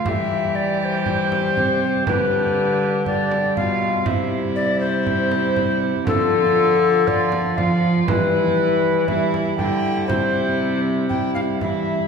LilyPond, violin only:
\new Staff \with { instrumentName = "Violin" } { \time 4/4 \key c \major \tempo 4 = 119 g'1 | g'2 g'4 f'4 | e'1 | f'2 f'4 f'4 |
e'2 e'4 e'4 | e'2 e'4 e'4 | }